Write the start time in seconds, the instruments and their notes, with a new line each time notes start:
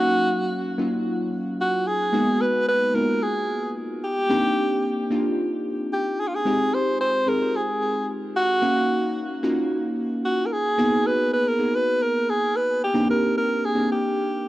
Already playing: synth keys F#3 A#3 C#4 D#4, alto saxophone F#4
0.00 synth keys F5
0.78 synth keys F#3 A#3 C#4 D#4 F4
1.61 alto saxophone F#4
1.87 alto saxophone G#4
2.13 synth keys G#3 A#3 B3 D#4 F#4
2.41 alto saxophone B4
2.68 alto saxophone B4
2.94 synth keys G#3 A#3 B3 D#4 F4, alto saxophone A#4
3.22 alto saxophone G#4
4.04 alto saxophone G4
4.29 synth keys A#3 C4 D4 D#4 G4
5.10 synth keys A#3 C4 D4 D#4 F4
5.93 alto saxophone G4
6.21 alto saxophone G#4
6.28 alto saxophone F4
6.35 alto saxophone G#4
6.45 synth keys G#3 C4 D#4 F4 G4
6.74 alto saxophone C5
7.01 alto saxophone C5
7.27 synth keys G#3 C4 D#4 F4 G#4, alto saxophone A#4
7.56 alto saxophone G#4
8.36 alto saxophone F#4
8.62 synth keys A#3 C#4 D#4 F#4 F5
9.43 synth keys A#3 C#4 D#4 F4 F#4
10.25 alto saxophone F#4
10.46 alto saxophone A#4
10.52 alto saxophone G#4
10.78 synth keys A#3 B3 D#4 F#4 G#4
11.06 alto saxophone B4
11.33 alto saxophone B4
11.48 alto saxophone A#4
11.59 synth keys A#3 B3 D#4 F#4 G#4
11.75 alto saxophone B4
12.02 alto saxophone A#4
12.30 alto saxophone G#4
12.56 alto saxophone B4
12.84 alto saxophone G4
12.94 synth keys A#3 C4 D4 D#4 G4
13.10 alto saxophone A#4
13.38 alto saxophone A#4
13.65 alto saxophone G#4
13.75 synth keys A#3 C4 D4 D#4 G4
13.92 alto saxophone G4